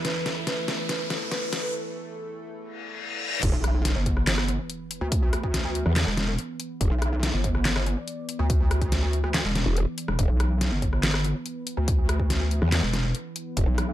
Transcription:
0.00 3.39 E2 medium
0.00 3.39 E3 medium
0.00 1.74 E4 medium
0.00 1.74 B4 medium
0.00 1.74 E5 medium
0.00 riser medium
0.05 3.39 A3 medium
0.05 0.29 B4 medium
0.05 snare medium
0.05 closed hi-hat medium
0.26 snare medium
0.26 closed hi-hat medium
0.47 0.65 B4 medium
0.47 snare medium
0.47 closed hi-hat medium
0.68 snare medium
0.68 closed hi-hat medium
0.79 0.88 B4 medium
0.89 1.13 B4 medium
0.89 snare medium
0.89 closed hi-hat medium
1.10 snare medium
1.10 closed hi-hat medium
1.31 1.50 B4 medium
1.31 snare medium
1.31 closed hi-hat medium
1.53 snare medium
1.53 closed hi-hat medium
1.63 1.72 B4 medium
2.58 reverse cymbal medium
3.43 3.52 E1 loud
3.43 13.93 E3 medium
3.43 13.93 B3 medium
3.43 6.79 B4 medium
3.43 kick loud
3.43 closed hi-hat medium
3.43 crash loud
3.43 impact medium
3.53 3.94 B1 loud
3.64 cross-stick medium
3.64 closed hi-hat medium
3.85 snare medium
3.85 closed hi-hat medium
3.96 4.57 G1 loud
4.06 kick medium
4.06 closed hi-hat medium
4.17 cross-stick medium
4.27 snare loud
4.27 clap loud
4.27 closed hi-hat medium
4.38 cross-stick medium
4.48 closed hi-hat medium
4.70 closed hi-hat medium
4.91 closed hi-hat medium
5.01 5.84 D2 loud
5.12 kick loud
5.12 closed hi-hat medium
5.33 cross-stick medium
5.33 closed hi-hat medium
5.43 kick medium
5.54 snare medium
5.54 closed hi-hat medium
5.75 closed hi-hat medium
5.86 6.05 E2 loud
5.86 cross-stick soft
5.96 snare loud
5.96 clap loud
5.96 closed hi-hat medium
6.07 6.37 E1 loud
6.17 snare medium
6.17 closed hi-hat medium
6.38 closed hi-hat medium
6.60 closed hi-hat medium
6.81 6.90 E1 loud
6.81 10.18 D5 medium
6.81 kick loud
6.81 closed hi-hat medium
6.91 7.32 B1 loud
7.02 cross-stick medium
7.02 closed hi-hat medium
7.23 snare medium
7.23 closed hi-hat medium
7.34 7.95 G1 loud
7.44 kick medium
7.44 closed hi-hat soft
7.55 cross-stick soft
7.65 snare loud
7.65 clap medium
7.65 closed hi-hat medium
7.76 cross-stick medium
7.86 closed hi-hat medium
8.08 closed hi-hat medium
8.29 closed hi-hat medium
8.39 9.22 D2 loud
8.50 kick loud
8.50 closed hi-hat medium
8.71 cross-stick medium
8.71 closed hi-hat soft
8.81 kick medium
8.81 closed hi-hat soft
8.92 snare medium
8.92 closed hi-hat medium
9.13 closed hi-hat soft
9.24 9.43 D2 loud
9.24 cross-stick medium
9.34 snare loud
9.34 clap medium
9.34 closed hi-hat medium
9.45 9.64 E1 loud
9.55 snare medium
9.55 closed hi-hat medium
9.66 9.85 E1 loud
9.77 closed hi-hat medium
9.98 closed hi-hat medium
10.08 10.17 E1 loud
10.08 cross-stick medium
10.19 10.28 E1 loud
10.19 13.56 B4 medium
10.19 kick loud
10.19 closed hi-hat medium
10.29 10.70 B1 loud
10.40 cross-stick medium
10.40 closed hi-hat soft
10.61 snare medium
10.61 closed hi-hat medium
10.72 11.33 G1 loud
10.82 kick medium
10.82 closed hi-hat soft
10.93 cross-stick medium
11.03 snare loud
11.03 clap medium
11.03 closed hi-hat medium
11.14 cross-stick medium
11.24 closed hi-hat medium
11.46 closed hi-hat medium
11.67 closed hi-hat medium
11.77 12.60 D2 loud
11.88 kick loud
11.88 closed hi-hat medium
12.09 cross-stick medium
12.09 closed hi-hat medium
12.20 kick medium
12.30 snare medium
12.30 closed hi-hat medium
12.51 closed hi-hat medium
12.62 12.81 E2 loud
12.62 cross-stick medium
12.72 snare loud
12.72 clap medium
12.72 closed hi-hat medium
12.83 13.13 E1 loud
12.93 snare medium
12.93 closed hi-hat medium
13.15 closed hi-hat medium
13.36 closed hi-hat medium
13.57 13.66 E1 loud
13.57 13.93 D4 medium
13.57 kick loud
13.57 closed hi-hat medium
13.67 13.93 B1 loud
13.78 cross-stick medium
13.78 closed hi-hat medium

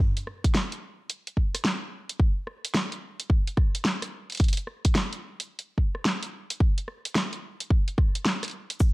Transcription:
0.17 closed hi-hat medium
0.27 cross-stick soft
0.44 kick loud
0.44 closed hi-hat medium
0.55 snare loud
0.72 closed hi-hat soft
1.10 closed hi-hat medium
1.27 closed hi-hat soft
1.37 kick medium
1.55 cross-stick soft
1.55 closed hi-hat medium
1.65 snare loud
2.09 closed hi-hat medium
2.20 kick loud
2.47 cross-stick soft
2.65 closed hi-hat medium
2.74 snare loud
2.92 closed hi-hat soft
3.20 closed hi-hat medium
3.30 kick loud
3.47 closed hi-hat soft
3.57 kick loud
3.57 cross-stick soft
3.75 closed hi-hat medium
3.85 snare loud
4.02 cross-stick soft
4.02 closed hi-hat medium
4.30 closed hi-hat soft
4.32 closed hi-hat soft
4.35 closed hi-hat soft
4.37 closed hi-hat soft
4.40 kick loud
4.40 closed hi-hat soft
4.44 closed hi-hat medium
4.48 closed hi-hat medium
4.53 closed hi-hat medium
4.57 closed hi-hat medium
4.67 cross-stick soft
4.85 kick loud
4.85 closed hi-hat medium
4.95 snare loud
5.13 closed hi-hat soft
5.40 closed hi-hat medium
5.59 closed hi-hat soft
5.78 kick medium
5.95 cross-stick soft
6.05 snare loud
6.23 closed hi-hat medium
6.50 closed hi-hat medium
6.60 kick loud
6.78 closed hi-hat medium
6.88 cross-stick soft
7.05 closed hi-hat medium
7.15 snare loud
7.33 closed hi-hat soft
7.60 closed hi-hat medium
7.70 kick loud
7.88 closed hi-hat soft
7.98 kick loud
7.98 cross-stick soft
8.15 closed hi-hat medium
8.25 snare loud
8.43 cross-stick soft
8.43 closed hi-hat soft
8.45 closed hi-hat soft
8.48 closed hi-hat soft
8.50 closed hi-hat soft
8.51 closed hi-hat soft
8.70 closed hi-hat medium
8.80 kick loud
8.80 cabasa soft

